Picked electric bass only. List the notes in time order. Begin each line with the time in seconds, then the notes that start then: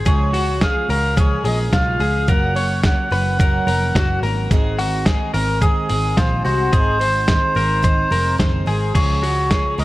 0.06 C#2
0.89 C#2
1.44 A#1
1.72 B1
2.00 C#2
2.28 F#1
3.11 F#1
3.67 F1
3.95 F#1
4.23 G#1
4.51 G#1
5.34 G#1
5.90 G#1
6.17 A#1
6.45 C2
6.73 G#1
7.56 G#1
8.11 F1
8.39 F#1
8.67 G#1
8.95 C#2
9.78 C#2